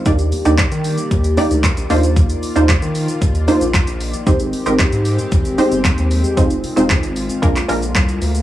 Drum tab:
HH |xxoxxxoxxxoxxxox|xxoxxxoxxxoxxxox|xxoxxxoxxxoxxxox|xxoxxxoxxxoxxxox|
SH |xxxxxxxxxxxxxxxx|xxxxxxxxxxxxxxxx|xxxxxxxxxxxxxxxx|xxxxxxxxxxxxxxxx|
CP |----x-------x---|----x-------x---|----x-------x---|----x----x--x---|
BD |o---o---o---o---|o---o---o---o---|o---o---o---o---|o---o---o---o---|